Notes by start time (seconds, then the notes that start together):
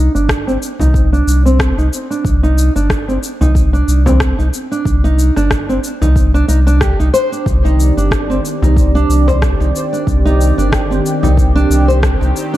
Already playing: D#4
0.15 G1 D4, shaker
0.29 kick, cross-stick, shaker
0.47 C4, shaker
0.63 shaker
0.79 C2 D#4, frame drum, shaker
0.94 kick, shaker
1.13 D4, shaker
1.27 C2, shaker
1.46 C4, shaker
1.59 kick, cross-stick, shaker
1.78 C2 D#4, shaker
1.93 shaker
2.10 D4, shaker
2.25 C2, kick, shaker
2.43 D#4, shaker
2.58 shaker
2.75 G1 D4, shaker
2.90 kick, cross-stick, shaker
3.08 C4, shaker
3.23 shaker
3.41 C2 D#4, frame drum, shaker
3.55 kick, shaker
3.73 D4, shaker
3.88 C2, shaker
4.06 C4, frame drum, shaker
4.20 kick, cross-stick, shaker
4.39 C2 D#4, shaker
4.54 shaker
4.72 D4, shaker
4.85 C2, kick, shaker
5.04 D#4, shaker
5.19 shaker
5.36 G1 D4, cross-stick, shaker
5.51 kick, cross-stick, shaker
5.69 C4, shaker
5.84 shaker
6.02 C2 D#4, frame drum, shaker
6.16 kick, shaker
6.34 D4, shaker
6.48 C2 D#4, shaker
6.67 D4, shaker
6.81 G4, kick, cross-stick, shaker
7.00 C2 D#4, shaker
7.14 C5, shaker
7.32 D4, shaker
7.46 C2 D#3 C4 G4 D5, kick, shaker
7.65 D#4, shaker
7.80 shaker
7.97 G1 D4, shaker
8.11 kick, cross-stick, shaker
8.30 C4, shaker
8.45 shaker
8.62 C2 D#4, frame drum, shaker
8.77 kick, shaker
8.95 D4, shaker
9.09 C2, shaker
9.28 C5, frame drum, shaker
9.42 kick, cross-stick, shaker
9.60 C2 D#4, shaker
9.76 shaker
9.93 D4, shaker
10.07 C2, kick, shaker
10.25 D#4, shaker
10.41 shaker
10.58 G1 D4, shaker
10.72 kick, cross-stick, shaker
10.91 C4, shaker
11.06 shaker
11.23 C2 D#4, frame drum, shaker
11.37 kick, shaker
11.56 D4, shaker
11.70 C2, shaker
11.88 C5, shaker
12.03 kick, cross-stick, shaker
12.21 C2 D#4, shaker
12.36 shaker
12.54 D4